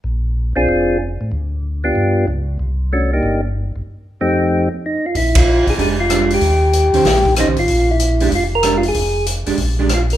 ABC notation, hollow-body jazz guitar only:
X:1
M:4/4
L:1/8
Q:"Swing" 1/4=189
K:Bbmix
V:1 name="Hollow-body jazz guitar"
z8 | z8 | z8 | z8 |
z4 [A,DG] z [A,DG]2 | z3 [E,_DGc] z2 [E,DGc] z | z3 [A,DG] z2 [A,DG] z | z3 [A,DG] z [A,DG] z2 |]